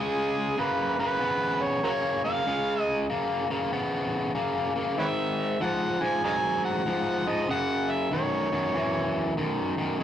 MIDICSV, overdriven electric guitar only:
0, 0, Header, 1, 2, 480
1, 0, Start_track
1, 0, Tempo, 627615
1, 1884, Time_signature, 4, 2, 24, 8
1, 7673, End_track
2, 0, Start_track
2, 0, Title_t, "Overdriven electric guitar"
2, 0, Program_c, 0, 29
2, 0, Note_on_c, 0, 49, 82
2, 0, Note_on_c, 0, 56, 88
2, 412, Note_off_c, 0, 49, 0
2, 414, Note_off_c, 0, 56, 0
2, 443, Note_on_c, 0, 49, 79
2, 448, Note_on_c, 0, 58, 92
2, 724, Note_off_c, 0, 49, 0
2, 727, Note_off_c, 0, 58, 0
2, 758, Note_on_c, 0, 49, 74
2, 761, Note_on_c, 0, 58, 70
2, 909, Note_off_c, 0, 49, 0
2, 910, Note_off_c, 0, 58, 0
2, 922, Note_on_c, 0, 49, 77
2, 924, Note_on_c, 0, 59, 84
2, 1370, Note_off_c, 0, 49, 0
2, 1371, Note_off_c, 0, 59, 0
2, 1403, Note_on_c, 0, 49, 71
2, 1407, Note_on_c, 0, 58, 81
2, 1684, Note_off_c, 0, 49, 0
2, 1686, Note_off_c, 0, 58, 0
2, 1720, Note_on_c, 0, 49, 60
2, 1724, Note_on_c, 0, 58, 70
2, 1870, Note_off_c, 0, 49, 0
2, 1872, Note_off_c, 0, 58, 0
2, 1889, Note_on_c, 0, 49, 81
2, 1893, Note_on_c, 0, 56, 90
2, 2333, Note_off_c, 0, 49, 0
2, 2335, Note_off_c, 0, 56, 0
2, 2369, Note_on_c, 0, 49, 74
2, 2371, Note_on_c, 0, 58, 83
2, 2647, Note_off_c, 0, 49, 0
2, 2648, Note_off_c, 0, 58, 0
2, 2680, Note_on_c, 0, 49, 68
2, 2684, Note_on_c, 0, 58, 74
2, 2830, Note_off_c, 0, 49, 0
2, 2832, Note_off_c, 0, 58, 0
2, 2848, Note_on_c, 0, 49, 76
2, 2851, Note_on_c, 0, 59, 91
2, 3293, Note_off_c, 0, 49, 0
2, 3294, Note_off_c, 0, 59, 0
2, 3326, Note_on_c, 0, 49, 74
2, 3327, Note_on_c, 0, 58, 79
2, 3606, Note_off_c, 0, 49, 0
2, 3606, Note_off_c, 0, 58, 0
2, 3636, Note_on_c, 0, 49, 59
2, 3640, Note_on_c, 0, 58, 68
2, 3788, Note_off_c, 0, 49, 0
2, 3790, Note_off_c, 0, 58, 0
2, 3806, Note_on_c, 0, 44, 83
2, 3809, Note_on_c, 0, 51, 84
2, 4252, Note_off_c, 0, 44, 0
2, 4253, Note_off_c, 0, 51, 0
2, 4287, Note_on_c, 0, 44, 79
2, 4293, Note_on_c, 0, 53, 88
2, 4566, Note_off_c, 0, 44, 0
2, 4569, Note_off_c, 0, 53, 0
2, 4597, Note_on_c, 0, 44, 77
2, 4602, Note_on_c, 0, 53, 77
2, 4748, Note_off_c, 0, 44, 0
2, 4751, Note_off_c, 0, 53, 0
2, 4766, Note_on_c, 0, 44, 77
2, 4773, Note_on_c, 0, 54, 85
2, 5212, Note_off_c, 0, 44, 0
2, 5215, Note_off_c, 0, 54, 0
2, 5248, Note_on_c, 0, 44, 72
2, 5253, Note_on_c, 0, 53, 84
2, 5527, Note_off_c, 0, 44, 0
2, 5529, Note_off_c, 0, 53, 0
2, 5558, Note_on_c, 0, 44, 66
2, 5563, Note_on_c, 0, 53, 70
2, 5709, Note_off_c, 0, 44, 0
2, 5711, Note_off_c, 0, 53, 0
2, 5726, Note_on_c, 0, 42, 76
2, 5729, Note_on_c, 0, 49, 91
2, 6171, Note_off_c, 0, 42, 0
2, 6173, Note_off_c, 0, 49, 0
2, 6203, Note_on_c, 0, 42, 74
2, 6207, Note_on_c, 0, 51, 96
2, 6484, Note_off_c, 0, 42, 0
2, 6486, Note_off_c, 0, 51, 0
2, 6517, Note_on_c, 0, 42, 75
2, 6518, Note_on_c, 0, 51, 73
2, 6668, Note_off_c, 0, 42, 0
2, 6669, Note_off_c, 0, 51, 0
2, 6686, Note_on_c, 0, 42, 73
2, 6689, Note_on_c, 0, 52, 89
2, 7131, Note_off_c, 0, 42, 0
2, 7133, Note_off_c, 0, 52, 0
2, 7168, Note_on_c, 0, 42, 75
2, 7170, Note_on_c, 0, 51, 83
2, 7447, Note_off_c, 0, 42, 0
2, 7448, Note_off_c, 0, 51, 0
2, 7477, Note_on_c, 0, 42, 64
2, 7481, Note_on_c, 0, 51, 73
2, 7628, Note_off_c, 0, 42, 0
2, 7630, Note_off_c, 0, 51, 0
2, 7646, Note_on_c, 0, 49, 79
2, 7673, Note_off_c, 0, 49, 0
2, 7673, End_track
0, 0, End_of_file